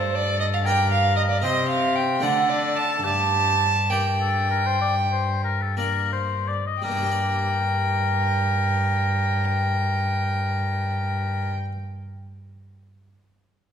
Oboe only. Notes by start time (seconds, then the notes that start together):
Already playing: A4
0.66 A#4
1.43 C5
2.22 A4
3.05 G4
3.91 G4
4.21 A4
4.51 A#4
4.66 C5
4.81 D5
5.12 C5
5.44 A#4
5.62 A4
5.78 A#4
6.13 C5
6.48 D5
6.67 D#5
6.84 A#4